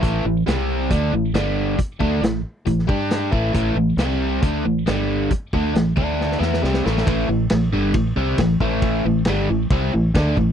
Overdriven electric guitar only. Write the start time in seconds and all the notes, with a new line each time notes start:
0.02 A2 E3 A3
0.25 A2 E3
0.47 C3 G3 C4
0.90 D3 A3 D4
1.13 A2 E3
1.34 G2 D3 G3
1.78 muted overdriven electric guitar stroke
2.00 D3 A3 D4
2.22 A2 E3
2.66 A2 E3
2.87 G3 D4 G4
3.31 A2 E3 A3
3.53 A2 E3 A3
3.76 A2 E3
3.99 C3 G3 C4
4.42 D3 A3 D4
4.65 A2 E3
4.86 G2 D3 G3
5.32 muted overdriven electric guitar stroke
5.54 D3 A3 D4
5.75 A2 E3
5.96 D3 A3 D4
6.39 E3 B3 E4
6.63 C3 G3 C4
6.86 A2 E3 A3
7.06 A2 E3 A3
7.29 A2 E3
7.51 A2 E3
7.73 G2 D3 G3
7.94 A2 E3
8.16 C3 G3 C4
8.40 A2 E3
8.61 A2 E3 A3
9.06 A2 E3
9.28 G2 D3 G3
9.50 A2 E3
9.72 C3 G3 C4
9.93 A2 E3
10.15 D3 A3 D4
10.37 A2 E3